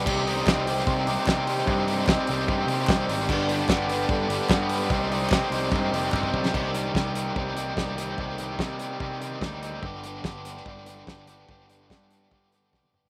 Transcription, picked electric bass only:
\new Staff \with { instrumentName = "Picked electric bass" } { \clef bass \time 4/4 \key c \minor \tempo 4 = 147 c,4 c,4 c8 c,16 r16 c4 | g,4 c,16 r16 c,8 g,8 c8 c,8 aes,,8 | g,,4 g,,4 g,8 g,,16 r16 g,4 | c,4 c,16 r16 c,8 g,8 f,,8 g,,8 b,,8 |
c,4 c,4 c,4 c,4 | c,4 c4 c4 d,4 | g,,4 g,,4 g,,4 g,,4 | g,,4 g,4 g,4 b,,8 g,,8 | }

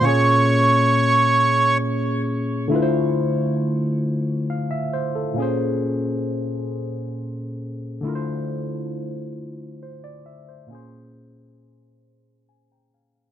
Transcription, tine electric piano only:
\new Staff \with { instrumentName = "Tine electric piano" } { \time 6/8 \key bes \lydian \tempo 4. = 45 << { r2. | r2 f''16 e''16 c''16 a'16~ | a'16 r2 r8. | r2 c''16 d''16 e''16 c''16~ |
c''16 r4. r16 aes''16 <g'' bes''>16 <f'' aes''>16 f''16 | } \\ { <bes, bes des' aes' des''>2. | <d a e' f' b' c''>2. | <bes, bes des' aes' c''>2. | <d a e' f' bes' c''>2. |
<bes, bes des' aes' c''>2. | } >> }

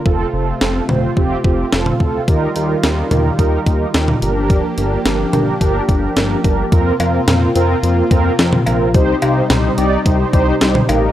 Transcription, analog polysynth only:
\new Staff \with { instrumentName = "Analog polysynth" } { \time 4/4 \key f \mixolydian \tempo 4 = 108 <c' f' a'>8 <c' f' a'>8 <c' f' a'>8 <c' f' c''>8 <c' f' g'>8 <c' f' g'>8 <c' f' a'>8 <c' f' a'>8 | <ees' g' bes'>8 <ees' g' bes'>8 <ees' g' bes'>8 <ees' g' bes'>8 <ees' g' bes'>8 <ees' g' bes'>8 <ees' g' bes'>8 <d' g' bes'>8~ | <d' g' bes'>8 <d' g' bes'>8 <d' g' bes'>8 <d' g' bes'>8 <d' g' bes'>8 <d' g' bes'>8 <d' g' bes'>8 <d' g' bes'>8 | <c' f' bes'>8 <c' f' bes'>8 <c' f' bes'>8 <c' f' bes'>8 <c' f' bes'>8 <c' f' bes'>8 <c' f' bes'>8 <c' f' bes'>8 |
<ees' g' c''>8 <ees' g' c''>8 <ees' g' c''>8 <ees' g' d''>8 <ees' g' c''>8 <ees' g' c''>8 <ees' g' c''>8 <ees' g' bes'>8 | }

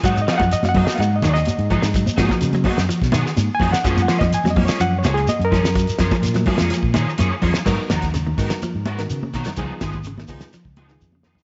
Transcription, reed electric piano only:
<<
  \new Staff \with { instrumentName = "Reed electric piano" } { \time 4/4 \key gis \dorian \tempo 4 = 126 \tuplet 3/2 { fis''8 dis''8 <eis'' fis''>8 dis''8 <eis'' fis''>8 dis''8 <eis'' fis''>8 dis''8 <d'' dis''>8~ } <d'' dis''>4~ | <d'' dis''>4. r4. \tuplet 3/2 { r8 gis''8 fis''8 } | \tuplet 3/2 { r8 fis''8 dis''8 gis''8 dis''8 cis''8 fis''8 cis''8 gis'8 dis''8 ais'4~ } | ais'2~ ais'8 r4. |
<b dis' fis' ais'>8 r4 <b dis' fis' ais'>8 r8. <b dis' fis' ais'>8 r8. | <b dis' eis' gis'>8 r4 <b dis' eis' gis'>8 r8. <b dis' eis' gis'>8 r8. | }
  \new Staff \with { instrumentName = "Reed electric piano" } { \time 4/4 \key gis \dorian r4. <ais b fis'>8 r2 | r8 <ais b fis'>8 r2. | <gis ais eis'>8 r4 <gis ais eis'>8 r2 | r4. <gis ais eis'>8 r2 |
r1 | r1 | }
>>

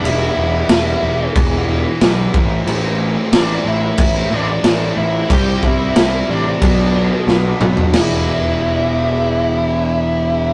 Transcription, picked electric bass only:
\new Staff \with { instrumentName = "Picked electric bass" } { \clef bass \time 4/4 \key e \minor \tempo 4 = 91 e,,8 e,,8 e,,8 e,,8 e,,4 b,,8 a,,8 | a,,4 a,,8 a,,8 a,,8 a,,8 a,,8 a,,8 | c,8 c,8 c,8 a,,8 b,,4 b,,8 b,,8 | e,,1 | }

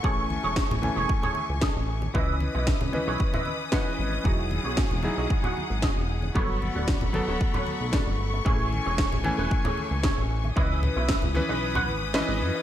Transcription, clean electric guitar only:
\new Staff \with { instrumentName = "Clean electric guitar" } { \time 4/4 \key a \lydian \tempo 4 = 114 <gis' a' cis''>8 r16 <gis' a' cis''>8 r8 <gis' a' cis''>16 r16 <gis' a' cis''>16 r8 <gis' a' dis''>16 r8. | <e' b' dis''>8 r16 <e' b' dis''>8 r8 <e' b' cis''>16 r16 <e' b' dis''>16 r8 <e' b' fis''>16 r8. | <fis' gis' dis''>8 r16 <fis' gis' cis''>8 r8 <fis' gis' dis''>16 r16 <fis' gis' fis''>16 r8 <fis' gis' dis''>16 r8. | <fis' a' b' cis''>8 r16 <fis' a' b' d''>8 r8 <fis' a' b' cis''>16 r16 <fis' a' b' cis''>16 r8 <fis' a' b' d''>16 r8. |
<gis' a' cis''>8 r16 <gis' a' cis''>8 r8 <gis' a' b'>16 r16 <gis' a' cis''>16 r8 <gis' a' cis''>16 r8. | <e' b' dis''>8 r16 <e' b' e''>8 r8 <e' b' dis''>16 r16 <e' b' fis''>16 r8 <e' b' dis''>16 r8. | }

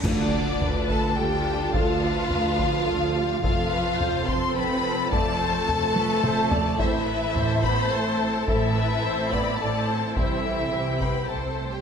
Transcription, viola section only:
\new Staff \with { instrumentName = "Viola section" } { \time 3/4 \key d \dorian \tempo 4 = 107 r4 b'4 a'8 g'8 | a'8 b'4. a'8 g'8 | a'8 b'8 c''8 c'4. | d''8 c''8 a'8 b'8 c''8 d''8 |
c''8 b'8 c''2 | a'8 b'8 c''8 d''8 d''8 c''8 | c''8 a'8 g'4 c''4 | }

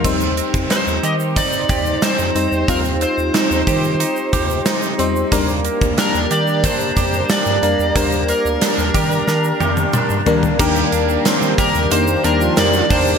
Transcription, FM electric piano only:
\new Staff \with { instrumentName = "FM electric piano" } { \time 4/4 \key c \minor \tempo 4 = 91 <g c' ees' c''>4. r2 <g c' ees' c''>8 | <g c' ees' f'>4. r2 <g c' ees' c''>8 | <g bes d' bes'>4. r2 <g bes d' bes'>8 | <g bes d' bes'>4. r2 <g bes d' bes'>8 |
<ees g bes d' bes'>4. r8 <g bes d' ees' c''>8 <ees g bes d' bes'>4 r8 | }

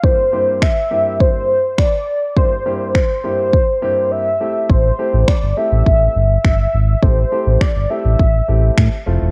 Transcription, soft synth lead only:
\new Staff \with { instrumentName = "Soft synth lead" } { \time 4/4 \key a \phrygian \tempo 4 = 103 c''4 e''4 c''4 d''4 | c''8 c''2~ c''8 e''4 | c''4 d''8 e''4. e''4 | c''4 d''8 e''2 r8 | }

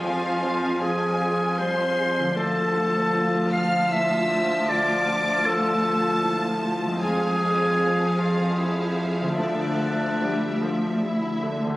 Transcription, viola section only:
\new Staff \with { instrumentName = "Viola section" } { \clef bass \time 3/4 \key d \minor \tempo 4 = 77 << { f'2. | f'2.~ | f'2. | aes'2. |
a'4 g8 f8 e'8 d8 | } \\ { f2. | f2.~ | f2. | f2.~ |
f4 r2 | } >> }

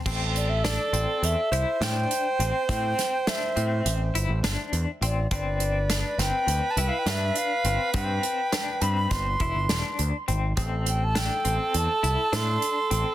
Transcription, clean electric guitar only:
\new Staff \with { instrumentName = "Clean electric guitar" } { \time 9/8 \key a \minor \tempo 4. = 68 c'4 d'8 c'4 e'8 d'4 c'8 | c'4 d'8 c'4 e'8 d'4 c'8 | c'4 d'8 c'4 e'8 d'4 c'8 | c'4 d'8 c'4 e'8 d'4 c'8 |
c'4 d'8 c'4 e'8 d'4 c'8 | }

